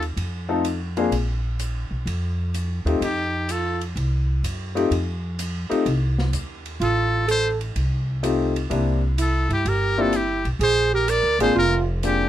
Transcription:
Already playing: upright bass D#2
0.02 ride
0.17 upright bass F2, ride
0.49 grand piano A3 C4 D#4 F4 A4
0.64 hi-hat pedal, ride
0.97 grand piano A#3 C4 D4 F4 G#4, ride
1.11 upright bass A#1, ride
1.59 hi-hat pedal, ride
1.91 upright bass B1
2.06 upright bass F2, ride
2.54 hi-hat pedal, ride
2.85 upright bass D#2, grand piano A3 C4 D#4 F4 G4, ride
3.01 upright bass F2, alto saxophone D#4, muted trumpet G4, ride
3.49 alto saxophone F4, muted trumpet A4, hi-hat pedal, ride
3.81 ride
3.96 upright bass C2, ride
4.43 upright bass F#2, hi-hat pedal, ride
4.75 grand piano A3 C4 D#4 F4 G4, ride
4.91 upright bass F2, ride
5.39 hi-hat pedal, ride
5.70 grand piano A3 C4 D#4 F4 G4, muted upright bass stroke, ride
5.86 upright bass C2, ride
6.19 snare
6.33 upright bass D#2, hi-hat pedal, ride
6.66 ride
6.80 upright bass A1, alto saxophone F4, muted trumpet A4, ride
7.28 alto saxophone A4, muted trumpet C5, hi-hat pedal, ride
7.61 ride
7.76 upright bass C2, ride
8.23 grand piano A3 C4 D#4 F4 G4, hi-hat pedal, ride
8.56 ride
8.70 upright bass C2, grand piano A#3 C4 D4 E4 G4, ride
9.18 alto saxophone E4, muted trumpet A4, hi-hat pedal, ride
9.49 upright bass G2, alto saxophone E4, muted trumpet G4, ride
9.65 upright bass G1, alto saxophone G4, muted trumpet A#4, ride
9.98 grand piano A#3 C4 D4 E4 G4, alto saxophone F4, muted trumpet A4
10.13 alto saxophone E4, muted trumpet G4, hi-hat pedal, ride
10.45 upright bass B1, ride
10.59 upright bass A#1, alto saxophone G#4, ride
10.63 muted trumpet C5
10.94 alto saxophone G4, muted trumpet A#4
11.08 alto saxophone A#4, muted trumpet D5, hi-hat pedal, ride
11.23 upright bass D2
11.39 upright bass G#1, grand piano A#3 C4 D4 F4 G#4, alto saxophone G#4, muted trumpet C5, ride
11.55 upright bass F1, alto saxophone F4, muted trumpet A#4
12.03 grand piano A#3 C4 D4 F4 G#4, alto saxophone D4, muted trumpet G4, hi-hat pedal, ride

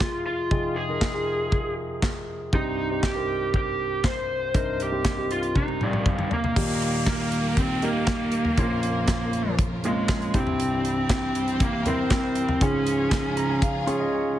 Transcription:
Already playing: grand piano F2 C3 D#4 F4 G#4, lead electric guitar F4
0.00 kick, snare, clap
0.26 lead electric guitar F4
0.51 grand piano F2 C3 D#4 F4 G#4, kick
0.76 lead electric guitar G#4
0.89 grand piano D#4 F4 A#4
1.01 kick, snare, clap
1.14 grand piano D#4 F4 G#4
1.52 kick
2.02 kick, snare, clap
2.53 grand piano C2 G2 C4 D#4 G4, lead electric guitar D#4, kick
2.91 grand piano C4 D#4 G4
3.03 lead electric guitar G4, kick, snare, clap
3.15 grand piano C4 D#4 A#4
3.54 lead electric guitar G4, kick
4.04 lead electric guitar C5, kick, snare, clap
4.54 grand piano C2 G2 C4 D#4 A#4, lead electric guitar C5, kick, closed hi-hat
4.80 lead electric guitar G4, closed hi-hat
4.92 grand piano C4 D#4 G4
5.04 kick, snare, clap, closed hi-hat
5.17 grand piano C4 D#4 G4
5.31 lead electric guitar F4, closed hi-hat
5.43 closed hi-hat
5.55 lead electric guitar D#4, kick, high tom
5.68 high tom
5.81 lead electric guitar G3, mid tom
5.93 mid tom
6.06 kick, mid tom
6.19 mid tom
6.31 lead electric guitar A#3, floor tom
6.44 floor tom
6.56 grand piano D#2 A#2 A#3 D#4 G4, string section D#3 G3 A#3 G4 A#4, kick, crash, downlifter
6.82 closed hi-hat
7.06 lead electric guitar A#3, kick, snare, clap, closed hi-hat
7.32 closed hi-hat
7.57 lead electric guitar C4, kick, closed hi-hat
7.82 grand piano A#3 D#4 G4, lead electric guitar A#3, closed hi-hat
8.07 kick, snare, clap, closed hi-hat
8.32 closed hi-hat
8.45 floor tom
8.57 grand piano A#1 F2 A#3 C#4 F4, string section C#3 F3 F4, lead electric guitar A#3, kick, closed hi-hat
8.83 closed hi-hat
9.08 kick, snare, clap, closed hi-hat
9.33 closed hi-hat
9.59 kick, closed hi-hat
9.84 lead electric guitar G#3, grand piano A#3 C4 F4, closed hi-hat
9.91 grand piano C#4
10.08 kick, snare, clap, closed hi-hat
10.22 closed hi-hat
10.34 grand piano C2 G2 C4 E4 G4, string section C3 E3 G3 E4 G4, lead electric guitar C4, kick, closed hi-hat
10.47 floor tom
10.60 closed hi-hat
10.85 closed hi-hat
11.09 lead electric guitar C4, kick, snare, clap, closed hi-hat
11.35 closed hi-hat
11.48 closed hi-hat
11.60 lead electric guitar A#3, kick, closed hi-hat
11.86 grand piano C4 E4 A#4, lead electric guitar C4, closed hi-hat, floor tom
12.10 kick, snare, clap, closed hi-hat
12.35 closed hi-hat
12.49 floor tom
12.61 grand piano C#2 G#2 C#4 F4 G#4, string section C#3 F3 G#3 F4 G#4, lead electric guitar C#4, kick, closed hi-hat
12.87 closed hi-hat
13.11 kick, snare, clap, closed hi-hat
13.37 grand piano A#5, closed hi-hat
13.50 grand piano G#5
13.62 grand piano F5, kick, closed hi-hat
13.87 grand piano C#4 F4 G#4, closed hi-hat
14.00 grand piano D#5
14.12 grand piano C#5

